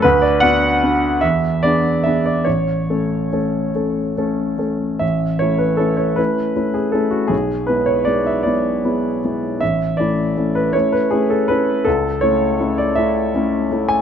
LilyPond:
\new Staff \with { instrumentName = "Grand piano" } { \time 6/8 \key a \major \tempo 4. = 52 << { b'16 d''16 fis''4 e''8 d''8 e''16 d''16 | cis''4. r4. | e''8 cis''16 b'16 a'16 cis''16 b'8. gis'16 a'16 fis'16 | gis'8 b'16 cis''16 d''16 e''16 d''4. |
e''8 d''8. b'16 cis''16 b'16 gis'16 a'16 b'8 | a'8 cis''8. d''16 e''4~ e''16 gis''16 | } \\ { d,8 <b d' fis'>8 <b d' fis'>8 e,8 <b d' gis'>8 <b d' gis'>8 | a,,8 <a cis' a'>8 <a cis' a'>8 <a cis' a'>8 <a cis' a'>8 <a cis' a'>8 | a,,8 <a cis' e'>8 <a cis' e'>8 <a cis' e'>8 <a cis' e'>8 <a cis' e'>8 | b,,8 <gis b e'>8 <gis b e'>8 <gis b e'>8 <gis b e'>8 <gis b e'>8 |
a,,8 <a cis' e'>8 <a cis' e'>8 <a cis' e'>8 <a cis' e'>8 <a cis' e'>8 | cis,8 <a cis' e'>8 <a cis' e'>8 <a cis' e'>8 <a cis' e'>8 <a cis' e'>8 | } >> }